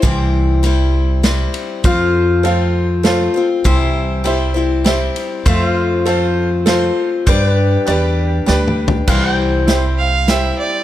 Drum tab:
CC |------------------|------------------|------------------|------------------|
RD |x-----x-----x--x--|x-----x-----x-----|x-----x-----x--x--|x-----x-----x-----|
HH |------------------|------------------|------------------|------------------|
SD |------------o-----|------------o-----|------------o-----|------------o-----|
T2 |------------------|------------------|------------------|------------------|
FT |------------------|------------------|------------------|------------------|
BD |o-----------------|o-----------------|o-----------------|o-----------------|

CC |------------------|x-----------------|
RD |x-----x-----------|------------------|
HH |------------------|------x-----x-----|
SD |------------o-----|------o-----o-----|
T2 |--------------o---|------------------|
FT |----------------o-|------------------|
BD |o-----------------|o-----------------|